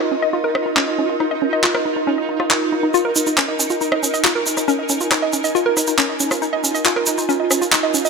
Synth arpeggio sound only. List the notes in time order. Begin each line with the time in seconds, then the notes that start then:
0.01 D#5
0.11 C#4
0.22 D#5
0.33 F4
0.44 A#4
0.55 D#4
0.66 D#4
0.77 C#4
0.88 D#5
0.98 C#4
1.09 F4
1.20 D#4
1.31 D#5
1.42 C#4
1.53 D#5
1.64 F4
1.75 A#4
1.85 D#4
1.96 D#4
2.07 C#4
2.18 D#5
2.29 D#4
2.40 F4
2.51 D#4
2.72 D#4
2.83 D#4
2.94 F4
3.05 A#4
3.16 D#4
3.27 D#4
3.38 C#4
3.48 D#5
3.59 C#4
3.70 F4
3.81 D#4
3.92 D#5
4.03 C#4
4.14 D#5
4.24 F4
4.35 A#4
4.46 D#4
4.57 D#4
4.68 C#4
4.79 D#5
4.90 C#4
5.01 F4
5.11 D#4
5.22 D#5
5.33 C#4
5.44 D#5
5.55 F4
5.66 A#4
5.77 D#4
5.88 D#4
5.98 C#4
6.09 D#5
6.20 C#4
6.31 F4
6.42 D#4
6.53 D#5
6.64 C#4
6.75 D#5
6.85 F4
6.96 A#4
7.07 D#4
7.18 D#4
7.29 C#4
7.40 D#5
7.51 C#4
7.61 F4
7.72 D#4
7.83 D#5
7.94 C#4
8.05 D#5